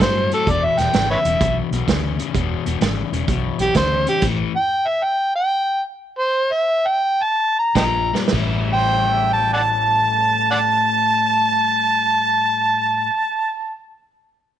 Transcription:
0.00 0.30 G2 medium
0.00 0.29 A2 medium
0.00 0.29 F#3 medium
0.00 0.32 C5 medium
0.00 kick medium
0.00 snare loud
0.00 closed hi-hat medium
0.32 0.46 A2 medium
0.32 0.46 F#3 medium
0.32 0.51 A4 medium
0.32 closed hi-hat medium
0.47 0.67 E1 medium
0.47 0.76 E2 medium
0.47 0.76 B2 medium
0.47 0.66 D5 medium
0.47 kick loud
0.47 closed hi-hat medium
0.64 0.81 E5 medium
0.78 0.88 E1 medium
0.78 0.92 E2 medium
0.78 0.93 B2 medium
0.78 1.09 G5 medium
0.78 snare soft
0.78 closed hi-hat medium
0.93 1.14 G#1 loud
0.93 1.22 E2 medium
0.93 1.22 C#3 medium
0.93 snare loud
0.93 closed hi-hat medium
1.11 1.19 B4 medium
1.11 1.18 C#5 medium
1.11 1.56 E5 medium
1.25 1.35 E1 medium
1.25 1.40 E2 medium
1.25 1.40 C#3 medium
1.25 closed hi-hat medium
1.41 1.61 B1 medium
1.41 1.69 E2 medium
1.41 1.70 B2 medium
1.41 kick loud
1.41 closed hi-hat medium
1.71 1.81 B1 medium
1.71 1.86 E2 medium
1.71 1.87 B2 medium
1.71 closed hi-hat medium
1.87 2.17 D2 medium
1.87 2.16 E2 medium
1.87 2.17 C#3 medium
1.87 kick medium
1.87 snare loud
1.87 closed hi-hat medium
2.19 2.33 E2 medium
2.19 2.33 C#3 medium
2.19 closed hi-hat medium
2.34 2.54 E1 medium
2.34 2.64 E2 medium
2.34 2.64 B2 medium
2.34 kick loud
2.34 closed hi-hat medium
2.66 2.76 E1 medium
2.66 2.80 E2 medium
2.66 2.81 B2 medium
2.66 closed hi-hat medium
2.81 3.01 G#1 medium
2.81 3.10 E2 medium
2.81 3.10 C#3 medium
2.81 snare loud
2.81 closed hi-hat medium
3.12 3.22 E1 medium
3.12 3.27 E2 medium
3.12 3.27 C#3 medium
3.12 closed hi-hat medium
3.28 3.48 B1 medium
3.28 3.58 E2 medium
3.28 3.58 B2 medium
3.28 kick loud
3.28 closed hi-hat medium
3.59 3.69 B1 medium
3.59 3.74 E2 medium
3.59 3.75 B2 medium
3.59 3.76 G4 loud
3.59 closed hi-hat medium
3.75 4.05 D2 medium
3.75 4.04 E2 medium
3.75 4.05 C#3 medium
3.75 4.07 C5 medium
3.75 kick medium
3.75 snare loud
3.75 closed hi-hat medium
4.07 4.21 E2 medium
4.07 4.21 C#3 medium
4.07 4.23 G4 loud
4.07 closed hi-hat medium
4.22 4.42 A1 medium
4.22 4.51 A2 medium
4.22 4.52 E3 medium
4.22 kick loud
4.22 closed hi-hat medium
4.22 crash medium
4.56 4.89 G5 loud
4.88 5.05 E5 medium
5.03 5.34 G5 loud
5.35 5.82 G5 loud
6.19 6.53 C5 loud
6.52 6.88 E5 loud
6.87 7.24 G5 medium
7.23 7.57 A5 loud
7.59 7.75 A#5 medium
7.75 8.11 A#1 medium
7.75 8.10 A#2 medium
7.75 8.10 F3 medium
7.75 7.83 D#5 medium
7.75 7.83 G5 medium
7.75 8.13 A#5 loud
7.75 kick medium
7.75 snare loud
7.75 closed hi-hat medium
8.13 8.31 A#2 medium
8.13 8.31 G3 medium
8.13 snare medium
8.28 snare medium
8.32 13.05 A1 medium
8.32 13.08 A2 loud
8.32 13.09 G3 medium
8.32 13.11 C#4 loud
8.32 13.12 E4 medium
8.32 kick medium
8.32 crash medium
8.73 9.15 C5 medium
8.73 9.30 G5 loud
9.13 9.34 E5 medium
9.32 9.54 G5 medium
9.32 9.51 A5 medium
9.53 9.61 D5 medium
9.53 9.61 F#5 medium
9.53 9.71 A5 medium
9.53 10.47 A5 medium
9.72 13.80 A5 loud
10.51 10.58 D5 medium
10.51 10.57 F#5 medium
10.51 13.80 A5 loud

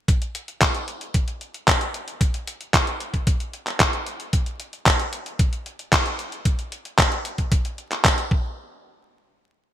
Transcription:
0.08 kick loud
0.08 closed hi-hat medium
0.22 closed hi-hat soft
0.35 closed hi-hat medium
0.48 closed hi-hat soft
0.61 kick loud
0.61 clap loud
0.61 closed hi-hat medium
0.75 closed hi-hat soft
0.88 closed hi-hat medium
1.01 closed hi-hat soft
1.14 kick loud
1.14 closed hi-hat medium
1.28 closed hi-hat soft
1.41 closed hi-hat soft
1.54 closed hi-hat soft
1.68 kick loud
1.68 clap loud
1.68 closed hi-hat medium
1.81 closed hi-hat soft
1.94 closed hi-hat medium
2.08 closed hi-hat soft
2.21 kick loud
2.21 closed hi-hat medium
2.34 closed hi-hat soft
2.47 closed hi-hat medium
2.61 closed hi-hat soft
2.74 kick loud
2.74 clap loud
2.74 closed hi-hat medium
2.87 closed hi-hat soft
3.00 closed hi-hat medium
3.14 kick medium
3.14 closed hi-hat soft
3.27 kick loud
3.27 closed hi-hat medium
3.40 closed hi-hat soft
3.53 closed hi-hat soft
3.67 clap soft
3.67 closed hi-hat soft
3.80 kick loud
3.80 clap loud
3.80 closed hi-hat medium
3.93 closed hi-hat soft
4.06 closed hi-hat medium
4.20 closed hi-hat soft
4.33 kick loud
4.33 closed hi-hat medium
4.46 closed hi-hat soft
4.60 closed hi-hat medium
4.73 closed hi-hat soft
4.86 kick loud
4.86 clap loud
4.86 closed hi-hat medium
5.00 closed hi-hat soft
5.13 closed hi-hat medium
5.26 closed hi-hat soft
5.39 kick loud
5.39 closed hi-hat medium
5.53 closed hi-hat soft
5.66 closed hi-hat soft
5.79 closed hi-hat soft
5.92 kick loud
5.92 clap loud
5.92 closed hi-hat medium
6.06 closed hi-hat soft
6.19 closed hi-hat medium
6.32 closed hi-hat soft
6.45 kick loud
6.45 closed hi-hat medium
6.59 closed hi-hat soft
6.72 closed hi-hat medium
6.85 closed hi-hat soft
6.98 kick loud
6.98 clap loud
6.98 closed hi-hat medium
7.12 closed hi-hat soft
7.25 closed hi-hat medium
7.38 kick medium
7.38 closed hi-hat soft
7.52 kick loud
7.52 closed hi-hat medium
7.65 closed hi-hat soft
7.78 closed hi-hat soft
7.91 clap soft
7.91 closed hi-hat soft
8.05 kick loud
8.05 clap loud
8.05 closed hi-hat medium
8.18 closed hi-hat soft
8.31 kick loud

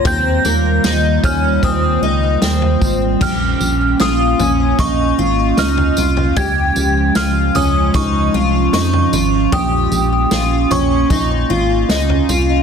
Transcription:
0.00 3.17 A#3 medium
0.00 3.17 F4 medium
0.00 0.26 A#5 medium
0.05 0.40 D#2 medium
0.05 3.18 D#3 medium
0.05 3.18 G3 medium
0.05 0.45 C4 medium
0.05 1.28 G6 loud
0.05 kick loud
0.05 floor tom loud
0.05 tambourine medium
0.45 0.80 D#2 medium
0.45 0.84 A#3 medium
0.45 tambourine medium
0.84 1.19 D#2 loud
0.84 1.23 D#4 medium
0.84 snare loud
0.84 tambourine medium
1.24 1.58 D#2 medium
1.24 1.63 C#4 medium
1.24 1.65 F6 medium
1.24 kick medium
1.24 floor tom medium
1.24 tambourine medium
1.63 1.98 D#2 medium
1.63 2.02 C4 medium
1.63 2.78 D#6 medium
1.63 kick medium
1.63 floor tom medium
1.63 tambourine medium
2.02 2.37 C#2 medium
2.02 2.42 D#4 medium
2.42 2.77 D#2 loud
2.42 3.21 C4 medium
2.42 snare loud
2.42 tambourine loud
2.62 floor tom medium
2.81 3.16 G#1 medium
2.81 kick medium
2.81 tambourine medium
3.21 3.56 A#1 loud
3.21 6.34 A#3 medium
3.21 6.34 C#4 medium
3.21 12.63 F4 medium
3.21 4.00 G4 medium
3.21 4.03 F6 medium
3.21 kick loud
3.21 floor tom loud
3.21 crash medium
3.21 tambourine medium
3.60 3.95 A#1 medium
3.60 tambourine medium
4.00 4.35 A#1 medium
4.00 4.40 F4 medium
4.00 4.82 D#6 medium
4.00 snare loud
4.00 tambourine medium
4.39 4.74 A#1 loud
4.39 4.79 C#4 medium
4.39 floor tom medium
4.39 tambourine medium
4.79 5.14 A#1 loud
4.79 5.19 D#4 medium
4.79 5.61 C#6 medium
4.79 kick loud
4.79 floor tom medium
4.79 tambourine medium
5.18 5.53 G#1 medium
5.18 5.58 F4 medium
5.57 5.93 C#2 loud
5.57 5.98 D#4 medium
5.57 6.14 F6 medium
5.57 snare loud
5.57 tambourine loud
5.77 floor tom medium
5.97 6.32 C2 medium
5.97 6.37 F4 medium
5.97 tambourine medium
6.17 floor tom medium
6.36 6.71 C#2 loud
6.36 9.50 F3 medium
6.36 9.50 G#3 medium
6.36 12.63 C#4 medium
6.36 7.16 G4 medium
6.36 7.18 G#6 loud
6.36 kick loud
6.36 floor tom loud
6.36 tambourine medium
6.76 7.11 C#2 medium
6.76 tambourine medium
7.15 7.51 C#2 loud
7.15 7.55 F4 medium
7.15 7.57 F6 medium
7.15 snare loud
7.15 tambourine medium
7.55 7.90 C#2 medium
7.55 7.94 C#4 medium
7.55 7.96 D#6 medium
7.55 floor tom medium
7.55 tambourine medium
7.94 8.29 C#2 loud
7.94 8.34 D#4 medium
7.94 8.73 C#6 medium
7.94 kick loud
7.94 floor tom medium
7.94 tambourine medium
8.34 8.69 C2 medium
8.34 8.74 F4 medium
8.73 9.08 F2 loud
8.73 9.13 D#4 medium
8.73 9.55 C#6 medium
8.73 snare loud
8.73 tambourine medium
8.93 floor tom medium
9.13 9.48 G#1 medium
9.13 9.52 F4 medium
9.13 tambourine medium
9.52 9.87 A#1 loud
9.52 12.63 A#3 medium
9.52 10.31 G4 medium
9.52 10.75 D#6 medium
9.52 kick loud
9.52 floor tom loud
9.52 tambourine medium
9.91 10.26 A#1 loud
9.91 tambourine medium
10.31 10.66 A#1 medium
10.31 10.71 F4 medium
10.31 snare loud
10.31 tambourine medium
10.71 11.06 A#1 medium
10.71 11.10 C#4 medium
10.71 11.46 C#6 medium
10.71 floor tom medium
10.71 tambourine medium
11.10 11.45 A#1 loud
11.10 11.50 D#4 medium
11.10 kick medium
11.10 floor tom medium
11.10 tambourine medium
11.50 11.85 G#1 medium
11.50 11.89 F4 medium
11.89 12.24 C#2 loud
11.89 12.29 D#4 medium
11.89 snare loud
11.89 tambourine loud
12.10 floor tom medium
12.29 12.63 C2 medium
12.29 12.63 F4 medium
12.29 tambourine medium

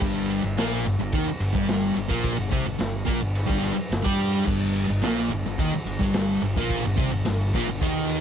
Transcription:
0.01 0.41 G1 medium
0.01 0.42 G2 loud
0.01 0.43 G3 loud
0.01 kick loud
0.01 crash loud
0.30 ride medium
0.44 0.57 G1 medium
0.44 0.58 G2 medium
0.58 0.84 A#1 loud
0.58 0.85 A#2 medium
0.58 0.85 A#3 loud
0.58 snare loud
0.58 ride medium
0.85 0.98 G1 medium
0.85 0.98 G2 medium
0.85 ride medium
1.00 1.13 G1 medium
1.00 1.13 G2 medium
1.12 1.26 D#2 loud
1.12 1.27 D#3 medium
1.12 1.27 D#4 loud
1.12 kick loud
1.12 ride loud
1.28 muted fingered electric bass stroke soft
1.28 muted distorted electric guitar stroke medium
1.40 1.54 G1 medium
1.40 1.52 G2 medium
1.40 ride medium
1.53 1.94 G1 loud
1.53 1.94 G2 medium
1.53 1.96 G3 loud
1.53 kick loud
1.68 snare loud
1.68 ride loud
1.95 2.09 G1 medium
1.95 2.10 G2 medium
1.95 ride medium
2.09 2.37 A#1 medium
2.09 2.37 A#2 medium
2.09 2.37 A#3 loud
2.09 kick loud
2.24 kick loud
2.24 ride loud
2.37 2.51 G1 medium
2.37 2.52 G2 medium
2.51 2.66 C2 medium
2.51 2.65 C3 loud
2.51 2.65 C4 loud
2.51 kick loud
2.51 ride medium
2.66 2.79 G1 medium
2.66 2.77 G2 medium
2.79 3.06 G1 medium
2.79 3.02 G2 medium
2.79 snare loud
2.79 ride loud
3.05 3.21 A#1 loud
3.05 3.20 A#2 medium
3.05 3.20 A#3 loud
3.05 kick medium
3.05 ride medium
3.20 3.48 G1 medium
3.20 3.44 G2 medium
3.35 ride loud
3.46 3.76 G1 loud
3.46 3.75 G2 medium
3.46 3.76 G3 loud
3.46 kick loud
3.64 ride medium
3.76 muted distorted electric guitar stroke medium
3.76 muted fingered electric bass stroke soft
3.90 4.04 G1 medium
3.90 4.05 G2 medium
3.90 snare loud
3.90 ride medium
4.02 4.45 G2 loud
4.02 4.45 G3 medium
4.02 4.46 G4 loud
4.02 kick loud
4.20 ride medium
4.45 4.87 G1 medium
4.45 4.87 G2 loud
4.45 4.88 G3 loud
4.45 kick loud
4.45 crash loud
4.76 ride medium
4.88 5.01 G1 medium
4.88 5.03 G2 medium
5.01 5.28 A#1 medium
5.01 5.30 A#2 medium
5.01 5.31 A#3 loud
5.01 snare loud
5.01 ride loud
5.29 5.43 G1 medium
5.29 5.45 G2 medium
5.29 ride medium
5.44 5.58 G1 medium
5.44 5.60 G2 medium
5.59 5.71 D#2 loud
5.59 5.72 D#3 medium
5.59 5.72 D#4 loud
5.59 kick loud
5.59 ride loud
5.72 muted fingered electric bass stroke soft
5.72 muted distorted electric guitar stroke medium
5.85 5.99 G1 medium
5.85 5.98 G2 medium
5.85 ride medium
6.00 6.40 G1 medium
6.00 6.40 G2 medium
6.00 6.42 G3 medium
6.00 kick loud
6.14 snare loud
6.14 ride loud
6.42 6.55 G1 medium
6.42 6.56 G2 medium
6.42 ride medium
6.56 6.83 A#1 medium
6.56 6.84 A#2 medium
6.56 6.84 A#3 loud
6.56 kick loud
6.70 kick loud
6.70 ride loud
6.84 6.97 G1 medium
6.84 6.99 G2 medium
6.97 7.11 C2 medium
6.97 7.11 C3 loud
6.97 7.12 C4 loud
6.97 kick loud
6.97 ride medium
7.11 7.25 G1 medium
7.11 7.24 G2 medium
7.25 7.52 G1 medium
7.25 7.48 G2 medium
7.25 snare loud
7.25 ride loud
7.54 7.67 A#1 loud
7.54 7.67 A#2 medium
7.54 7.68 A#3 loud
7.54 kick medium
7.54 ride medium
7.67 7.81 G1 medium
7.67 7.82 G2 medium
7.81 8.21 D#2 loud
7.81 8.21 D#3 loud
7.81 8.21 D#4 loud
7.81 kick loud
7.81 ride loud
8.09 ride medium

